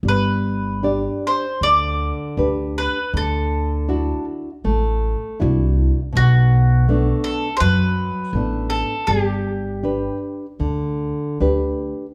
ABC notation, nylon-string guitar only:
X:1
M:4/4
L:1/8
Q:1/4=79
K:G
V:1 name="Nylon-string guitar"
G,2 [DGd]2 D,2 [DGB]2 | D,2 [DEF]2 A,2 [DEF]2 | B,,2 [A,B,D]2 F,2 [A,B,D]2 | G,2 [DGB]2 D,2 [DGB]2 |]